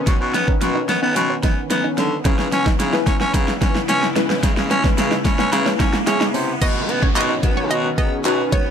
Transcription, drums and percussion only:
0.07 kick loud
0.07 snare medium
0.07 closed hi-hat medium
0.34 snare medium
0.34 closed hi-hat medium
0.48 kick medium
0.61 snare medium
0.61 closed hi-hat medium
0.89 snare loud
0.89 closed hi-hat medium
1.16 snare medium
1.16 closed hi-hat loud
1.43 kick medium
1.43 snare loud
1.43 closed hi-hat medium
1.70 snare loud
1.70 closed hi-hat loud
1.98 snare loud
1.98 closed hi-hat medium
2.25 kick loud
2.25 snare loud
2.25 closed hi-hat medium
2.39 snare loud
2.52 snare loud
2.52 closed hi-hat medium
2.66 kick medium
2.66 snare loud
2.80 snare loud
2.80 closed hi-hat medium
2.93 snare loud
3.07 kick medium
3.07 snare loud
3.07 closed hi-hat medium
3.20 snare loud
3.34 kick medium
3.34 snare loud
3.34 closed hi-hat loud
3.48 snare loud
3.62 kick medium
3.62 snare loud
3.62 closed hi-hat medium
3.75 snare loud
3.89 snare loud
3.89 closed hi-hat loud
4.03 snare loud
4.16 snare loud
4.16 closed hi-hat medium
4.30 snare loud
4.43 kick loud
4.43 snare loud
4.43 closed hi-hat loud
4.57 snare loud
4.71 snare loud
4.71 closed hi-hat medium
4.84 kick loud
4.84 snare loud
4.98 snare loud
4.98 closed hi-hat medium
5.12 snare loud
5.25 kick medium
5.25 snare loud
5.25 closed hi-hat medium
5.39 snare loud
5.53 snare loud
5.53 closed hi-hat loud
5.66 snare loud
5.80 kick medium
5.80 snare loud
5.80 closed hi-hat medium
5.93 snare loud
6.07 snare loud
6.07 closed hi-hat loud
6.21 snare loud
6.34 open hi-hat medium
6.62 kick loud
6.62 closed hi-hat loud
6.62 crash loud
6.89 closed hi-hat medium
7.03 kick loud
7.16 clap loud
7.16 closed hi-hat medium
7.43 kick medium
7.43 closed hi-hat medium
7.71 closed hi-hat loud
7.98 kick medium
7.98 closed hi-hat medium
8.25 clap loud
8.25 closed hi-hat loud
8.52 kick loud
8.52 closed hi-hat medium

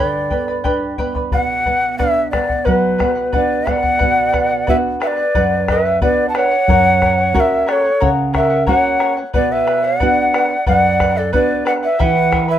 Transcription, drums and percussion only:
0.30 bombo low medium
0.65 bombo low medium
0.98 bombo low soft
1.15 bombo low soft
1.32 bombo low medium
1.66 bombo low soft
2.00 bombo low medium
2.33 bombo rim medium
2.33 bombo low medium
2.50 bombo low medium
2.66 bombo low medium
3.00 bombo rim medium
3.00 bombo low medium
3.33 bombo low medium
3.67 bombo rim medium
3.67 bombo low medium
3.83 bombo low soft
4.01 bombo low medium
4.34 bombo rim soft
4.34 bombo low soft
4.68 bombo low medium
5.02 bombo rim medium
5.35 bombo low medium
5.68 bombo rim soft
5.68 bombo low medium
6.01 bombo low medium
6.35 bombo rim medium
6.68 bombo low medium
7.02 bombo rim soft
7.02 bombo low medium
7.35 bombo low medium
7.69 bombo rim soft
8.02 bombo low medium
8.35 bombo rim soft
8.35 bombo low medium
8.67 bombo low medium
9.00 bombo rim soft
9.34 bombo low medium
9.68 bombo rim soft
10.00 bombo low medium
10.34 bombo rim soft
10.67 bombo low medium
11.00 bombo rim medium
11.00 bombo low medium
11.34 bombo low medium
11.67 bombo rim medium
12.00 bombo low medium
12.33 bombo rim medium
12.33 bombo low medium

